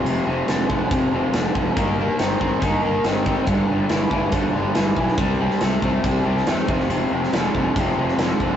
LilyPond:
<<
  \new Staff \with { instrumentName = "Overdriven electric guitar" } { \clef bass \time 4/4 \key f \mixolydian \tempo 4 = 140 <f, c>8 <f, c>8 <f, d>8 <f, d>8 <f, c>8 <f, c>8 <f, d>8 <f, d>8 | <ees bes>8 <ees bes>8 <ees c'>8 <ees c'>8 <ees bes>8 <ees bes>8 <ees c'>8 <ees c'>8 | <g, d>8 <g, d>8 <g, e>8 <g, e>8 <g, d>8 <g, d>8 <g, e>8 <g, e>8 | <c g>8 <c g>8 <c a>8 <c a>8 <c g>8 <c g>8 <c a>8 <f, c>8 |
<f, c>8 <f, c>8 <f, d>8 <f, d>8 <f, c>8 <f, c>8 <f, d>8 <f, d>8 | }
  \new Staff \with { instrumentName = "Overdriven electric guitar" } { \clef bass \time 4/4 \key f \mixolydian <f, c>8 <f, c>8 <f, d>8 <f, d>8 <f, c>8 <f, c>8 <f, d>8 <f, d>8 | <ees bes>8 <ees bes>8 <ees c'>8 <ees c'>8 <ees bes>8 <ees bes>8 <ees c'>8 <ees c'>8 | <g, d>8 <g, d>8 <g, e>8 <g, e>8 <g, d>8 <g, d>8 <g, e>8 <g, e>8 | <c g>8 <c g>8 <c a>8 <c a>8 <c g>8 <c g>8 <c a>8 <f, c>8 |
<f, c>8 <f, c>8 <f, d>8 <f, d>8 <f, c>8 <f, c>8 <f, d>8 <f, d>8 | }
  \new Staff \with { instrumentName = "Fingered electric bass" } { \clef bass \time 4/4 \key f \mixolydian f,,8 f,,8 f,,8 f,,8 f,,8 f,,8 f,,8 f,,8 | g,,4 g,,8 g,,8 g,,8 g,,8 g,,4 | g,,8 g,,8 g,,8 g,,8 g,,8 g,,8 g,,8 b,,8 | c,4 c,8 c,8 c,8 c,8 e,8 f,,8 |
f,,8 f,,8 f,,8 f,,8 f,,8 f,,8 f,,8 f,,8 | }
  \new DrumStaff \with { instrumentName = "Drums" } \drummode { \time 4/4 hh4 <hh sn>8 bd8 <hh bd>4 <hh sn>8 bd8 | <hh bd>4 <hh sn>8 bd8 <hh bd>4 <hh sn>8 bd8 | <hh bd>4 <hh sn>8 bd8 <hh bd>4 <hh sn>8 bd16 sn16 | <hh bd>8. sn16 <hh sn>8 bd8 <hh bd>8. sn16 <hh sn>8 bd16 sn16 |
hh8. sn16 <hh sn>8 bd8 <hh bd>8. sn16 <hh sn>8 bd8 | }
>>